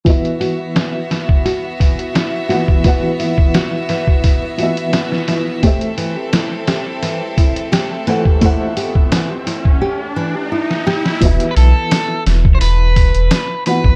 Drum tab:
HH |oxo-o-o-o-oxo-o-|o-o-o-o-o-oxo-o-|oxo-o-o-o-oxo-o-|o-o-o-o---------|
SD |----o-o-----o---|----o-------ooo-|----o-o-----o---|----o--------ooo|
BD |o------o--o----o|o--o---oo-------|o---------o----o|o--o---o--------|

HH |oxo-o-o-o-oxo-o-|
SD |----o-o-----o---|
BD |o------o--o----o|